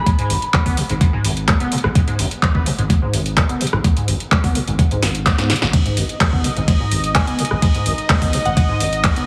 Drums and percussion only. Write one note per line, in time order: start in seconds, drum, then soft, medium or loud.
0.06 kick loud
0.06 closed hi-hat medium
0.19 closed hi-hat soft
0.30 open hi-hat loud
0.42 closed hi-hat medium
0.54 kick loud
0.54 clap loud
0.66 kick medium
0.66 open hi-hat medium
0.77 open hi-hat loud
0.89 closed hi-hat medium
1.01 kick loud
1.01 closed hi-hat medium
1.25 open hi-hat loud
1.37 closed hi-hat medium
1.48 kick loud
1.48 clap loud
1.48 closed hi-hat medium
1.60 closed hi-hat medium
1.72 open hi-hat loud
1.78 closed hi-hat medium
1.84 cross-stick medium
1.95 kick loud
1.95 closed hi-hat medium
2.08 closed hi-hat soft
2.19 open hi-hat loud
2.31 closed hi-hat medium
2.43 kick loud
2.43 clap loud
2.55 kick medium
2.66 open hi-hat loud
2.79 closed hi-hat medium
2.90 kick loud
2.90 closed hi-hat medium
3.13 open hi-hat loud
3.26 closed hi-hat medium
3.37 kick loud
3.37 clap loud
3.37 closed hi-hat medium
3.49 closed hi-hat medium
3.61 open hi-hat loud
3.67 closed hi-hat medium
3.73 cross-stick medium
3.84 kick loud
3.84 closed hi-hat medium
3.97 closed hi-hat soft
4.08 open hi-hat loud
4.20 closed hi-hat medium
4.32 kick loud
4.32 clap loud
4.44 kick medium
4.44 open hi-hat medium
4.55 open hi-hat loud
4.68 closed hi-hat medium
4.79 kick loud
4.79 closed hi-hat medium
4.91 closed hi-hat soft
5.03 snare medium
5.03 open hi-hat loud
5.15 closed hi-hat medium
5.26 kick loud
5.26 snare medium
5.26 clap loud
5.26 closed hi-hat medium
5.38 snare medium
5.38 closed hi-hat medium
5.50 snare medium
5.50 open hi-hat loud
5.56 closed hi-hat medium
5.62 snare medium
5.73 kick loud
5.73 closed hi-hat medium
5.73 ride medium
5.86 closed hi-hat soft
5.97 open hi-hat loud
6.09 closed hi-hat medium
6.21 kick loud
6.21 clap loud
6.21 ride medium
6.33 kick medium
6.44 open hi-hat loud
6.57 closed hi-hat medium
6.68 kick loud
6.68 closed hi-hat medium
6.68 ride medium
6.91 open hi-hat loud
7.04 closed hi-hat medium
7.15 kick loud
7.15 clap loud
7.15 closed hi-hat medium
7.15 ride medium
7.27 closed hi-hat medium
7.39 open hi-hat loud
7.45 closed hi-hat medium
7.51 cross-stick medium
7.62 kick loud
7.62 closed hi-hat medium
7.62 ride medium
7.75 closed hi-hat soft
7.86 open hi-hat loud
7.98 closed hi-hat medium
8.10 kick loud
8.10 clap loud
8.10 ride medium
8.22 kick medium
8.22 open hi-hat medium
8.33 open hi-hat loud
8.45 closed hi-hat medium
8.57 kick loud
8.57 closed hi-hat medium
8.57 ride medium
8.80 open hi-hat loud
8.93 closed hi-hat medium
9.04 kick loud
9.04 clap loud
9.04 closed hi-hat medium
9.04 ride medium
9.16 closed hi-hat medium